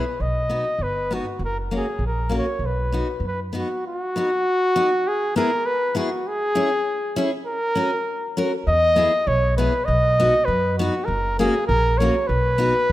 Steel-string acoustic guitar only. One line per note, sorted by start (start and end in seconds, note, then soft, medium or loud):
0.50 0.64 B3 soft
0.50 0.64 D#4 soft
0.50 0.64 F#4 soft
1.11 1.24 B3 soft
1.11 1.25 D#4 soft
1.11 1.25 F#4 medium
1.71 1.85 A#3 medium
1.71 1.85 C#4 soft
1.71 1.85 F#4 soft
2.29 2.44 A#3 soft
2.29 2.45 C#4 soft
2.29 2.45 F#4 medium
2.92 3.06 B3 soft
2.92 3.07 D#4 soft
2.92 3.07 F#4 medium
3.53 3.67 B3 soft
3.53 3.67 D#4 soft
3.53 3.68 F#4 medium
4.16 4.29 B3 medium
4.16 4.29 D#4 soft
4.16 4.30 F#4 medium
4.76 4.89 B3 medium
4.76 4.89 D#4 medium
4.76 4.90 F#4 medium
5.36 5.49 B3 medium
5.36 5.50 E4 medium
5.36 5.50 G#4 medium
5.95 6.08 B3 medium
5.95 6.09 E4 soft
5.95 6.09 G#4 medium
6.55 6.69 C#4 medium
6.55 6.69 E4 medium
6.55 6.69 G#4 medium
7.16 7.30 C#4 medium
7.16 7.29 E4 medium
7.16 7.30 G#4 medium
7.75 7.89 C#4 medium
7.75 7.90 F#4 medium
7.75 7.90 A#4 medium
8.37 8.51 C#4 medium
8.37 8.51 F#4 medium
8.37 8.51 A#4 medium
8.96 9.11 B3 medium
8.96 9.11 E4 medium
8.96 9.12 G#4 medium
9.58 9.72 B3 medium
9.58 9.73 E4 medium
9.58 9.73 G#4 medium
10.20 10.33 B3 medium
10.20 10.33 D#4 medium
10.20 10.33 F#4 medium
10.79 10.93 B3 medium
10.79 10.93 D#4 medium
10.79 10.94 F#4 medium
11.39 11.53 A#3 medium
11.39 11.53 C#4 soft
11.39 11.54 F#4 medium
12.00 12.13 A#3 medium
12.00 12.14 C#4 medium
12.00 12.14 F#4 medium
12.58 12.72 B3 medium
12.58 12.73 D#4 medium
12.58 12.73 F#4 medium